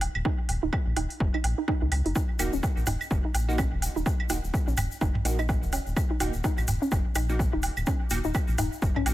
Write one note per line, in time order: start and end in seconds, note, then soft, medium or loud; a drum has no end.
0.01 open hi-hat medium
0.01 low woodblock medium
0.15 0.22 D#1 medium
0.15 claves medium
0.25 0.32 D#4 medium
0.25 kick loud
0.25 low woodblock medium
0.49 0.59 D#1 medium
0.49 open hi-hat medium
0.49 low woodblock soft
0.63 0.70 D#1 medium
0.63 0.68 D#4 medium
0.73 kick loud
0.73 claves medium
0.73 low woodblock medium
0.87 0.94 A#1 medium
0.96 1.07 D#1 medium
0.96 1.03 D#4 medium
0.96 open hi-hat medium
0.96 low woodblock medium
1.10 open hi-hat soft
1.20 1.30 F#1 medium
1.20 kick loud
1.20 low woodblock soft
1.34 1.39 D#4 medium
1.34 claves medium
1.44 1.54 A#1 medium
1.44 open hi-hat medium
1.44 low woodblock medium
1.58 1.63 D#4 medium
1.68 1.78 D#4 loud
1.68 kick loud
1.68 low woodblock medium
1.82 1.89 C#2 medium
1.82 1.85 D#4 medium
1.92 2.02 C#2 medium
1.92 open hi-hat medium
1.92 claves medium
1.92 low woodblock soft
2.06 2.13 F#1 loud
2.06 2.10 D#4 medium
2.06 open hi-hat soft
2.15 2.22 D#4 medium
2.15 kick loud
2.15 low woodblock medium
2.15 shaker medium
2.39 2.49 D#1 medium
2.39 2.52 A#3 medium
2.39 2.52 D#4 medium
2.39 2.52 F#4 medium
2.39 open hi-hat medium
2.39 claves medium
2.39 low woodblock soft
2.39 shaker medium
2.53 2.60 D#1 medium
2.53 2.58 C#4 medium
2.53 shaker soft
2.63 kick loud
2.63 low woodblock medium
2.63 shaker soft
2.77 2.84 A#1 medium
2.77 shaker soft
2.86 2.97 D#1 medium
2.86 2.94 D#4 medium
2.86 mid tom medium
2.86 open hi-hat medium
2.86 low woodblock medium
2.86 shaker medium
3.01 claves medium
3.01 shaker soft
3.11 3.21 F#1 medium
3.11 kick loud
3.11 low woodblock soft
3.11 shaker soft
3.25 3.30 D#4 medium
3.34 3.74 A#1 medium
3.34 open hi-hat medium
3.34 low woodblock medium
3.34 shaker medium
3.48 3.57 A#3 medium
3.48 3.57 D#4 medium
3.48 3.57 F#4 medium
3.48 shaker soft
3.58 3.65 C#4 medium
3.58 kick loud
3.58 claves medium
3.58 low woodblock medium
3.58 shaker medium
3.72 3.88 D#1 medium
3.82 open hi-hat medium
3.82 low woodblock soft
3.82 shaker medium
3.96 4.03 D#1 medium
3.96 4.01 D#4 medium
3.96 shaker soft
4.06 kick loud
4.06 low woodblock medium
4.06 shaker medium
4.20 claves medium
4.29 4.40 D#1 medium
4.29 4.38 A#3 medium
4.29 4.37 D#4 medium
4.29 4.38 D#4 medium
4.29 4.38 F#4 loud
4.29 open hi-hat medium
4.29 low woodblock medium
4.29 shaker loud
4.44 4.51 D#1 medium
4.44 shaker soft
4.54 kick loud
4.54 low woodblock soft
4.54 shaker soft
4.68 4.75 A#1 medium
4.68 4.72 C#4 medium
4.68 shaker soft
4.77 4.87 D#1 medium
4.77 mid tom medium
4.77 open hi-hat medium
4.77 claves medium
4.77 low woodblock medium
4.77 shaker medium
4.91 shaker soft
5.01 5.11 F#1 medium
5.01 5.08 D#4 medium
5.01 kick loud
5.01 low woodblock medium
5.01 shaker soft
5.15 mid tom medium
5.25 5.64 A#1 medium
5.25 5.38 A#3 medium
5.25 5.38 D#4 medium
5.25 5.38 F#4 medium
5.25 open hi-hat medium
5.25 low woodblock soft
5.25 shaker medium
5.39 5.44 D#4 medium
5.39 claves medium
5.39 shaker soft
5.49 kick loud
5.49 low woodblock medium
5.49 shaker soft
5.63 5.79 D#1 medium
5.63 shaker soft
5.73 5.79 C#4 medium
5.73 open hi-hat medium
5.73 low woodblock medium
5.73 shaker medium
5.87 5.94 D#1 medium
5.87 shaker soft
5.96 kick loud
5.96 claves medium
5.96 low woodblock soft
5.96 shaker medium
6.10 6.15 D#4 medium
6.20 6.30 D#1 medium
6.20 6.33 A#3 medium
6.20 6.33 D#4 medium
6.20 6.33 F#4 medium
6.20 open hi-hat loud
6.20 low woodblock medium
6.20 shaker medium
6.33 6.41 D#1 medium
6.33 shaker soft
6.44 6.51 D#4 medium
6.44 kick loud
6.44 low woodblock medium
6.44 shaker medium
6.58 6.65 A#1 medium
6.58 claves medium
6.58 shaker soft
6.68 6.78 D#1 medium
6.68 mid tom medium
6.68 open hi-hat medium
6.68 low woodblock soft
6.68 shaker medium
6.82 6.87 C#4 medium
6.82 shaker soft
6.92 7.02 F#1 medium
6.92 kick loud
6.92 low woodblock medium
6.92 shaker medium
7.15 7.55 A#1 medium
7.15 7.22 D#4 medium
7.15 open hi-hat medium
7.15 claves medium
7.15 low woodblock medium
7.15 shaker loud
7.29 7.38 A#3 medium
7.29 7.38 D#4 medium
7.29 7.38 F#4 medium
7.29 shaker soft
7.39 kick loud
7.39 low woodblock soft
7.39 shaker soft
7.53 7.69 D#1 medium
7.53 7.58 D#4 medium
7.63 open hi-hat loud
7.63 low woodblock medium
7.63 shaker medium
7.77 7.84 D#1 medium
7.77 claves medium
7.77 shaker soft
7.86 7.94 C#4 medium
7.86 kick loud
7.86 low woodblock medium
7.86 shaker medium
8.10 8.21 D#1 medium
8.10 8.19 A#3 medium
8.10 8.19 D#4 medium
8.10 8.19 F#4 medium
8.10 open hi-hat medium
8.10 low woodblock soft
8.10 shaker loud
8.24 8.32 D#1 medium
8.24 8.30 D#4 medium
8.24 shaker soft
8.34 kick loud
8.34 claves medium
8.34 low woodblock medium
8.34 shaker medium
8.48 8.56 A#1 medium
8.48 shaker soft
8.58 8.68 D#1 medium
8.58 8.65 D#4 medium
8.58 mid tom medium
8.58 open hi-hat medium
8.58 low woodblock medium
8.58 shaker medium
8.72 shaker soft
8.82 8.92 F#1 medium
8.82 kick loud
8.82 low woodblock soft
8.82 shaker soft
8.96 9.01 C#4 medium
8.96 mid tom medium
8.96 claves medium
9.06 9.14 A#1 medium
9.06 9.14 A#3 medium
9.06 9.14 D#4 medium
9.06 9.14 F#4 medium
9.06 open hi-hat medium
9.06 low woodblock medium
9.06 shaker medium